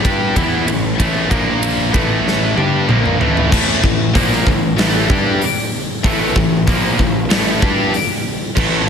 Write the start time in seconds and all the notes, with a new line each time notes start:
0.03 G2 G3 D4 G4, kick, ride
0.35 E2 E3 B3 E4, kick, ride
0.67 A1 A2 E3, ride
0.98 A1 A2 E3 A3, kick, ride
1.30 A#1 A#2 F3 A#3, kick, ride
1.63 ride
1.92 A1 A2 E3 A3, kick, ride
2.28 snare
2.56 G2 G3 D4 G4, high tom
2.88 A#1 A#2 F3 A#3, mid tom
3.06 mid tom
3.19 A1 A2 E3 A3, floor tom
3.37 floor tom
3.50 A1 A2 E3 A3, kick, crash
3.82 A1 A2 E3, kick
4.14 A#1 A#2 F3 A#3, kick, open hi-hat
4.33 snare
4.46 A1 A2 E3, kick
4.76 A1 A2 E3 A3, snare, open hi-hat
5.09 G2 G3 D4 G4, kick
5.41 open hi-hat
6.04 A1 A2 E3 A3, kick, open hi-hat
6.36 A1 A2 E3, kick
6.67 A#1 A#2 F3 A#3, kick, open hi-hat
6.99 A1 A2 E3, kick
7.30 A1 A2 E3 A3, snare, open hi-hat
7.62 G2 G3 D4 G4, kick
7.94 open hi-hat
8.56 A1 A2 E3 A3, kick, crash